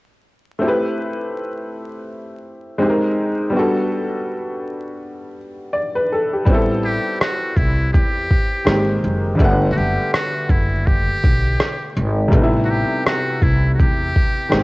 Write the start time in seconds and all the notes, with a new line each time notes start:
0.59 A3 C4
0.63 E4 G4
0.68 B4
2.78 G#3 C4 D#4 G4
2.83 G#4
2.89 A#4
3.50 G3 B3
3.54 D4 F#4
3.59 A4
5.73 D5
5.95 B4
6.12 A4
6.33 G4
6.45 A1 G3 B3, kick
6.50 C4 E4
6.54 A4
6.85 G4
7.21 F#4, cross-stick
7.57 C2 E4, kick
7.93 E2 G4, kick
8.31 kick
8.65 G#1 D#3 G#3 A#3 C4, cross-stick
8.69 G4
9.04 F#1
9.35 D3 G3
9.39 G1 A3 B3, kick
9.44 F#5
9.72 F#4
9.77 F#1 G4
10.14 F#4, cross-stick
10.49 F#1 E4, kick
10.87 G4, kick
11.24 B1, kick
11.60 cross-stick
11.97 G#1
12.28 C3 G3
12.32 A1 A3 B3, kick
12.37 D#4
12.43 E4
12.65 F#4
12.70 G4
13.06 F#4, cross-stick
13.42 C2 E4, kick
13.74 F#4
13.80 E2 G4, kick
14.16 kick
14.49 D#3 G#3 A#3 C4, cross-stick
14.53 G#1 G4